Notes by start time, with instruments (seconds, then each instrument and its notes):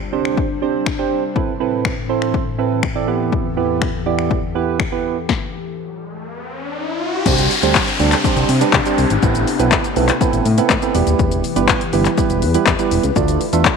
Already playing: ambient pad C3 G3 D4 C5
0.12 synth keys C4 D4 G4 C5
0.25 finger snap
0.37 kick
0.62 synth keys C4 D4 G4 C5
0.86 finger snap, kick
0.99 synth keys C4 D4 G4 C5
1.36 ambient pad A2 E3 C4 A4, synth keys C4 E4 A4 B4, kick
1.60 synth keys C4 E4 A4 B4
1.85 finger snap, kick
2.09 synth keys C4 E4 A4 C5
2.22 finger snap
2.34 kick
2.58 synth keys C4 E4 A4 B4
2.83 finger snap, kick
2.95 synth keys C4 E4 A4 D5
3.08 ambient pad E2 G4, synth keys B3 E4 G4 B4
3.32 kick
3.57 synth keys B3 E4 G4 B4
3.82 finger snap, kick
4.06 synth keys B3 E4 G4 D5
4.19 finger snap
4.31 kick
4.55 synth keys B3 E4 G4 B4
4.80 finger snap, kick
4.92 synth keys B3 E4 G4 B4
5.29 kick, snare, riser
7.26 analog synth bass C2, ambient pad C3 C4 D4 G4, synth keys G3 C4 D4 G4 C5, kick, crash, downlifter, shaker
7.38 closed hi-hat, shaker
7.51 open hi-hat, shaker
7.63 analog synth bass D2, synth keys G3 C4 D4 G4 C5, closed hi-hat, shaker
7.75 kick, clap, shaker
7.88 closed hi-hat, shaker
7.99 analog synth bass D2, synth keys G3 C4 D4 G4 A4, open hi-hat, shaker
8.12 clap, closed hi-hat, shaker
8.24 synth keys G3 C4 D4 G4 C5, kick, shaker
8.37 analog synth bass C2, closed hi-hat, shaker
8.49 analog synth bass C3, open hi-hat, shaker
8.61 synth keys G3 C4 D4 G4 B4, closed hi-hat, shaker
8.73 analog synth bass C3, kick, clap, shaker
8.85 synth keys G3 C4 D4 G4 C5, closed hi-hat, shaker
8.98 analog synth bass C2, open hi-hat, shaker
9.10 analog synth bass G#1, closed hi-hat, shaker
9.22 analog synth bass A1, ambient pad A3 B3, synth keys B3 C4 E4 A4 B4, kick, shaker
9.35 closed hi-hat, shaker
9.47 open hi-hat, shaker
9.59 analog synth bass B1, synth keys B3 C4 E4 A4 B4, closed hi-hat, shaker
9.72 kick, clap, shaker
9.84 closed hi-hat, shaker
9.96 analog synth bass B1, synth keys B3 C4 E4 A4 B4, open hi-hat, shaker
10.09 clap, closed hi-hat, shaker
10.21 synth keys B3 C4 E4 A4 B4, kick, shaker
10.33 analog synth bass A1, closed hi-hat, shaker
10.46 analog synth bass A2, open hi-hat, shaker
10.58 synth keys B3 C4 E4 A4 B4, closed hi-hat, shaker
10.70 analog synth bass A2, kick, clap, shaker
10.82 synth keys B3 C4 E4 A4 B4, closed hi-hat, shaker
10.95 analog synth bass E1, ambient pad E3 E4 G4 B4, synth keys G3 B3 E4 G4 B4, open hi-hat, shaker
11.07 analog synth bass D#1, closed hi-hat, shaker
11.19 analog synth bass E1, kick, shaker
11.32 closed hi-hat, shaker
11.44 open hi-hat, shaker
11.56 analog synth bass G1, synth keys G3 B3 E4 G4 B4, closed hi-hat, shaker
11.69 kick, clap, shaker
11.81 closed hi-hat, shaker
11.93 analog synth bass G1, synth keys G3 B3 E4 G4 B4, open hi-hat, shaker
12.05 clap, closed hi-hat, shaker
12.17 synth keys G3 B3 E4 G4 B4, kick, shaker
12.30 analog synth bass E1, closed hi-hat, shaker
12.42 analog synth bass E2, open hi-hat, shaker
12.54 synth keys G3 B3 E4 G4 B4, closed hi-hat, shaker
12.66 analog synth bass E2, kick, clap, shaker
12.79 synth keys G3 B3 E4 G4 B4, closed hi-hat, shaker
12.91 analog synth bass E1, open hi-hat, shaker
13.03 analog synth bass C#2, closed hi-hat, shaker
13.16 analog synth bass D2, ambient pad D3 D4 F4 A4, synth keys A3 D4 F4 A4 D5, kick, shaker
13.28 closed hi-hat, shaker
13.41 open hi-hat, shaker
13.53 analog synth bass E2, synth keys A3 D4 F4 A4 E5, closed hi-hat, shaker
13.65 kick, clap, shaker